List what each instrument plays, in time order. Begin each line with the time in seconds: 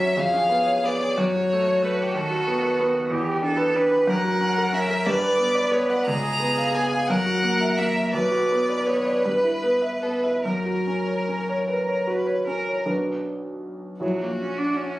Already playing: grand piano F#2 F#3 C#4 B4, cello C#4, violin E5
0.00 grand piano C#5
0.17 grand piano F2, cello G#4, violin F5
0.34 grand piano C#4
0.50 grand piano B3
0.66 grand piano C#5
0.84 grand piano B3, violin D5
1.01 grand piano C#5
1.15 grand piano F#2, cello F#4, violin C#5
1.36 grand piano F#4
1.53 grand piano A3
1.68 grand piano C#5
1.82 grand piano A3, violin B4
1.99 violin G4, grand piano C#5
2.15 grand piano D#2, violin A4
2.31 grand piano F#4
2.47 grand piano B3
2.63 grand piano B4
2.80 grand piano B3
2.94 grand piano B4
3.11 grand piano E2, cello G4
3.27 grand piano G4
3.42 grand piano D4, cello A4
3.57 grand piano B4
3.74 grand piano D4, cello B4
3.91 grand piano B4
4.07 grand piano F#2, cello A#4, violin F#5
4.25 grand piano F#4
4.41 grand piano C#4
4.58 grand piano A#4
4.73 grand piano C#4, violin E5
4.90 grand piano A#4
5.06 grand piano G2, cello B4, violin D5
5.22 grand piano B4
5.38 grand piano B3
5.55 grand piano D5
5.72 grand piano B3, violin C#5
5.89 grand piano D5, violin F#5
6.06 grand piano C#2, cello G#4, violin A#5
6.23 grand piano G#4
6.40 grand piano B3
6.58 grand piano F5
6.74 grand piano B3, violin G#5
6.92 grand piano F5
7.09 grand piano F#2, cello A#4, violin F#5
7.26 grand piano F#4
7.44 grand piano A#3
7.61 grand piano E5
7.78 grand piano A#3, violin E5
7.96 grand piano E5
8.13 grand piano B1, cello B4, violin D5
8.31 grand piano F#4
8.52 grand piano B3
8.69 grand piano D5
8.87 grand piano B3, violin C#5
9.06 grand piano D5
9.24 grand piano G2, violin B4
9.43 grand piano E4
9.63 grand piano B3
9.82 grand piano E5
10.03 grand piano B3, violin A4
10.23 violin B4, grand piano E5
10.44 grand piano F#2, cello A#4, violin A#4
10.66 grand piano F#4
10.87 grand piano C#4
11.07 grand piano C#5
11.28 grand piano C#4
11.49 grand piano C#5
11.68 cello A#4, grand piano B4
11.89 grand piano C#5
12.07 grand piano F#4, cello B4
12.27 grand piano C#5
12.47 grand piano C#4, cello A#4
12.68 grand piano C#5
12.86 grand piano B1 D4 F#4 B4
14.00 grand piano A#1 E4 F#4 C#5, cello F#3, violin F#4
14.23 cello A#3
14.40 cello C#4
14.57 cello D4
14.76 cello C#4